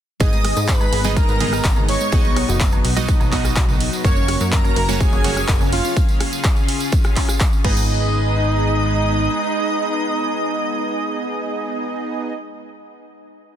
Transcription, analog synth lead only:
0.21 D#5
0.69 B4
1.17 A#4
1.89 C#5
4.05 C#5
4.52 A#4
5.00 G#4
5.73 F4
7.65 D#4

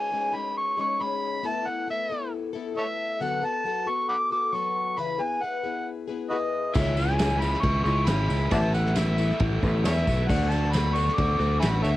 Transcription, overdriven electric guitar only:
6.74 C#3 E3 G#3 C#4 E4
6.96 G#3 C#4 E4
7.19 E3 G#3 C#4 E4
7.40 C#3 E3 G#3 C#4 E4
7.63 E3 G#3 C#4 E4
7.86 G#3 C#4 E4
8.07 C#3 E3 G#3 C#4 E4
8.29 G#3 C#4 E4
8.52 A2 E3 A3 B3 E4
8.74 A3 B3 E4
8.96 E3 A3 B3 E4
9.18 A2 E3 A3 B3 E4
9.40 E3 A3 B3 E4
9.63 A3 B3 E4
9.84 A2 E3 A3 B3 E4
10.06 A3 B3 E4
10.29 D3 A3 D4 F#4
10.50 A3 D4 F#4
10.73 D3 A3 D4 F#4
10.96 D3 A3 D4 F#4
11.17 D3 A3 D4 F#4
11.39 A3 D4 F#4
11.60 D3 A3 D4 F#4
11.83 A3 D4 F#4

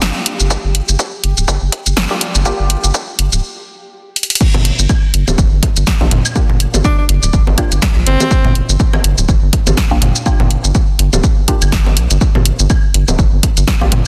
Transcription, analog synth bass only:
0.40 G1
0.64 G1
0.89 G1
1.24 G1
1.37 D1
1.48 G1
1.62 G1
1.86 G1
2.35 G1
2.59 G1
2.84 G1
3.19 G1
3.33 D1
4.55 G1
4.79 G1
5.14 G1
5.28 D1
5.38 G1
5.52 G1
5.77 G1
6.01 A#1
6.11 G1
6.50 G1
6.74 G1
7.09 G1
7.23 D1
7.33 G1
7.47 G1
7.72 G1
7.96 A#1
8.07 G1
8.45 G1
8.69 G1
9.04 G1
9.18 D1
9.29 G1
9.42 G1
9.67 G1
9.91 A#1
10.02 G1
10.40 G1
10.64 G1
10.99 G1
11.13 D1
11.62 G1
11.97 A#1
12.11 G1
12.35 G1
12.59 G1
12.94 G1
13.08 D1
13.19 G1
13.32 G1
13.57 G1
13.81 A#1
13.92 G1

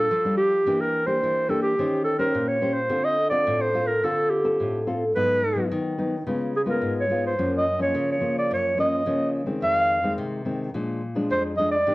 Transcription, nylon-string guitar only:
0.11 F3
0.25 G3 D4 F4
0.67 E3 A#3 D4 G4
1.07 A#3 D4 G4
1.23 E3
1.49 A#3 D4 G4
1.79 D#3 C#4 G4 C5
2.19 C#4 G4 C5
2.35 A#2
2.61 C#4 G4 C5
2.89 D3 C4 F4 A4
3.31 C4 F4 A4
3.47 A2
3.74 C4 F4 A4
4.04 D3 C4 F4 A4
4.44 C4 F4 A4
4.60 A2
4.87 C4 F4 A4
5.16 G#2 F#3 B3 D#4
5.56 F#3 B3 D#4
5.71 D#3
5.98 F#3 B3 D#4
6.27 C#3 G#3 B3 F4
6.66 G#3 B3 F4
6.82 G#2
7.10 G#3 B3 F4
7.39 F#2 F3 A#3 C#4
7.79 F3 A#3 C#4
7.95 C#3
8.21 F3 A#3 C#4
8.51 F#2
8.77 F3 A#3 C#4
9.06 C#3 F3 A#3 C#4
9.46 D#3 G#3 C4
9.62 F2
10.03 D#3 G#3 C4
10.18 C3
10.45 D#3 G#3 C4
10.74 A#2 F3 G#3 D4
11.15 F3 G#3 D4
11.30 F2
11.58 F3 G#3 D4
11.87 D#3 A#3 D4 G4

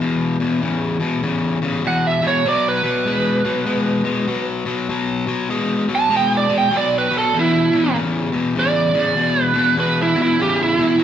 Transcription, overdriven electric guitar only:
0.01 E2 B2
0.40 E2 B2
0.62 E2 C#3
1.00 E2 B2
1.23 E2 C#3
1.62 E2 C#3
1.84 E2 B2
2.22 E2 B2
2.45 B2 F#3
2.83 B2 F#3
3.06 B2 G#3
3.45 B2 F#3
3.66 B2 G#3
4.04 B2 G#3
4.28 B2 F#3
4.65 B2 F#3
4.89 B2 F#3
5.26 B2 F#3
5.50 B2 G#3
5.88 B2 F#3
6.10 B2 G#3
6.49 B2 G#3
6.71 B2 F#3
7.11 B2 F#3
7.34 E2 B2
7.72 E2 B2
7.94 E2 C#3
8.32 E2 B2
8.55 E2 C#3
8.94 E2 C#3
9.16 E2 B2
9.54 E2 B2
9.76 E2 B2
10.15 E2 B2
10.39 E2 C#3
10.77 E2 B2
10.99 B2 F#3

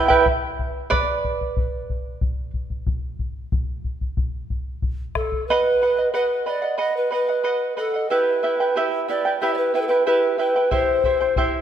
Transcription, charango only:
0.08 E4 B4 G5
0.90 B4 D5
5.50 B4 D#5 F#5
5.82 B4 D#5 F#5
5.97 D#5 F#5
6.14 B4 D#5 F#5
6.46 B4 D#5 F#5
6.62 D#5 F#5
6.78 B4 D#5 F#5
7.11 B4 D#5 F#5
7.28 D#5 F#5
7.43 B4 D#5 F#5
7.77 B4 D#5 F#5
7.94 D#5 F#5
8.10 E4 G4 B4 E5 G5
8.43 E4 B4 E5 G5
8.60 E4 B4 G5
8.76 E4 G4 B4 E5 G5
9.08 E4 B4 E5 G5
9.25 E4 B4 G5
9.42 E4 G4 B4 E5 G5
9.74 E4 B4 E5 G5
9.89 E4 B4 G5
10.07 E4 G4 B4 E5 G5
10.38 E4 B4 E5 G5
10.56 E4 B4 G5
10.71 E4 G4 C5 E5 G5
11.05 E4 C5 E5 G5
11.20 E4 C5 G5
11.37 E4 G4 C5 E5 G5

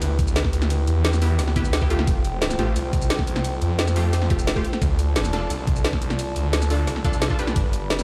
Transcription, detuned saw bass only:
0.02 D2
0.53 D2
0.87 E2
1.39 D2
1.90 D2
2.07 F1
2.59 A1
2.76 C2
3.27 C2
3.62 F2
4.13 F2
4.30 F1
4.82 D2
5.33 F1
5.50 C2
6.02 C2
6.36 D2
6.87 C2
7.39 C2
7.56 G1

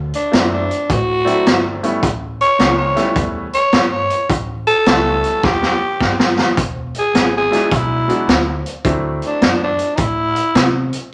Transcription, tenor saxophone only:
0.16 D4
0.54 D4
0.91 F#4
2.41 C#5
2.78 C#5
3.54 C#5
3.89 C5 C#5
4.67 A4
5.45 G4
6.99 G#4
7.37 G#4
7.76 E4
9.27 D4
9.63 D4
9.96 D#4
10.00 E4

